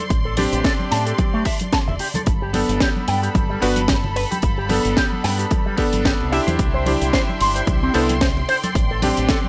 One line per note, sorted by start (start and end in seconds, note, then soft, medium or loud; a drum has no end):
0.00 2.24 D5 medium
0.00 2.23 C6 medium
0.10 0.45 A1 medium
0.10 kick loud
0.10 closed hi-hat medium
0.25 0.34 A4 medium
0.37 1.43 C4 medium
0.37 1.43 D4 medium
0.37 1.43 G4 medium
0.37 0.42 A4 medium
0.37 open hi-hat loud
0.37 high conga loud
0.37 low conga medium
0.53 0.61 A1 loud
0.53 closed hi-hat medium
0.64 0.72 A4 medium
0.64 kick loud
0.64 snare loud
0.64 closed hi-hat medium
0.80 high conga medium
0.91 1.12 A2 medium
0.91 1.03 A5 medium
0.91 snare soft
0.91 open hi-hat loud
1.07 1.13 A4 medium
1.07 closed hi-hat medium
1.18 kick loud
1.18 closed hi-hat medium
1.18 high conga medium
1.34 1.43 A3 loud
1.45 1.57 E5 medium
1.45 kick medium
1.45 open hi-hat loud
1.59 closed hi-hat medium
1.59 high conga medium
1.72 1.77 A5 medium
1.72 kick loud
1.72 snare loud
1.72 closed hi-hat medium
1.88 1.96 E1 medium
1.88 1.94 E5 medium
1.88 low conga medium
1.99 2.07 G4 medium
1.99 open hi-hat loud
2.14 2.21 A4 medium
2.14 closed hi-hat medium
2.14 high conga medium
2.14 low conga medium
2.26 2.62 G1 medium
2.26 6.28 A4 medium
2.26 6.28 B5 medium
2.26 kick loud
2.26 closed hi-hat medium
2.42 2.51 G4 medium
2.53 3.59 B3 medium
2.53 3.59 D4 medium
2.53 2.59 G4 medium
2.53 3.60 A4 medium
2.53 open hi-hat loud
2.53 high conga medium
2.53 low conga medium
2.69 2.77 G1 loud
2.69 closed hi-hat medium
2.80 2.89 G4 medium
2.80 kick loud
2.80 snare loud
2.80 closed hi-hat medium
2.97 high conga medium
3.08 3.28 G2 medium
3.08 3.19 G5 medium
3.08 open hi-hat loud
3.23 3.29 G4 medium
3.23 closed hi-hat medium
3.35 3.55 G1 medium
3.35 kick loud
3.35 closed hi-hat medium
3.35 high conga medium
3.50 3.59 G3 loud
3.62 4.24 G1 medium
3.62 3.79 B3 medium
3.62 3.79 D4 medium
3.62 3.79 F#4 medium
3.62 3.66 G4 medium
3.62 3.79 B4 medium
3.62 open hi-hat loud
3.76 closed hi-hat medium
3.76 high conga medium
3.88 3.94 G4 medium
3.88 kick loud
3.88 snare loud
3.88 closed hi-hat medium
4.04 low conga medium
4.16 4.24 B4 loud
4.16 open hi-hat loud
4.31 4.37 G4 medium
4.31 closed hi-hat medium
4.31 high conga medium
4.42 4.78 G1 medium
4.42 kick loud
4.42 closed hi-hat medium
4.58 4.67 G4 medium
4.69 5.75 B3 medium
4.69 5.75 D4 medium
4.69 4.74 G4 medium
4.69 5.76 A4 medium
4.69 open hi-hat loud
4.69 high conga medium
4.69 low conga medium
4.85 4.93 G1 medium
4.85 closed hi-hat medium
4.97 5.05 G4 loud
4.97 kick loud
4.97 snare loud
4.97 closed hi-hat medium
5.12 high conga medium
5.24 5.44 G2 medium
5.24 5.35 G5 medium
5.24 snare soft
5.24 open hi-hat loud
5.39 5.45 G4 medium
5.39 closed hi-hat medium
5.51 kick loud
5.51 closed hi-hat medium
5.51 high conga medium
5.66 5.75 G3 loud
5.77 6.29 B3 medium
5.77 6.29 D4 medium
5.77 5.83 G4 medium
5.77 6.30 A4 loud
5.77 kick medium
5.77 open hi-hat medium
5.93 6.11 G1 medium
5.93 closed hi-hat medium
5.93 high conga medium
6.05 6.10 G4 medium
6.05 kick loud
6.05 snare loud
6.05 closed hi-hat medium
6.20 6.38 C2 medium
6.20 low conga medium
6.32 6.83 D4 medium
6.32 6.84 E4 medium
6.32 6.84 G4 medium
6.32 6.40 E5 loud
6.32 8.46 E5 medium
6.32 9.49 G5 medium
6.32 9.49 C6 medium
6.32 open hi-hat medium
6.47 6.56 E2 medium
6.47 6.53 C5 medium
6.47 closed hi-hat medium
6.47 high conga medium
6.47 low conga medium
6.59 6.94 C2 medium
6.59 kick loud
6.59 closed hi-hat medium
6.74 6.83 C5 medium
6.86 7.91 D4 medium
6.86 7.92 E4 medium
6.86 7.92 G4 medium
6.86 6.91 C5 medium
6.86 open hi-hat medium
6.86 high conga medium
6.86 low conga medium
7.01 7.10 C2 loud
7.01 closed hi-hat medium
7.13 7.21 C5 loud
7.13 kick loud
7.13 snare loud
7.13 closed hi-hat medium
7.29 high conga medium
7.41 7.60 G1 medium
7.41 7.52 C6 medium
7.41 open hi-hat loud
7.56 7.62 C5 medium
7.56 closed hi-hat medium
7.67 7.87 C2 medium
7.67 kick loud
7.67 closed hi-hat medium
7.67 high conga medium
7.83 7.92 C4 medium
7.94 8.43 C2 loud
7.94 8.11 B3 medium
7.94 8.11 D4 medium
7.94 8.11 E4 medium
7.94 8.12 A4 loud
7.94 7.99 C5 medium
7.94 open hi-hat loud
8.09 closed hi-hat medium
8.09 high conga medium
8.21 8.26 C5 medium
8.21 kick loud
8.21 snare loud
8.21 closed hi-hat medium
8.37 low conga medium
8.49 8.56 C5 loud
8.49 9.49 D5 medium
8.49 open hi-hat medium
8.63 8.70 A4 medium
8.63 closed hi-hat medium
8.63 high conga medium
8.75 9.10 A1 medium
8.75 kick loud
8.75 closed hi-hat medium
8.91 9.00 A4 medium
9.02 9.49 C4 medium
9.02 9.49 D4 medium
9.02 9.49 G4 medium
9.02 9.07 A4 medium
9.02 open hi-hat loud
9.02 high conga medium
9.02 low conga medium
9.17 9.26 A1 loud
9.17 closed hi-hat medium
9.29 9.37 A4 loud
9.29 kick loud
9.29 snare loud
9.29 closed hi-hat medium
9.44 high conga medium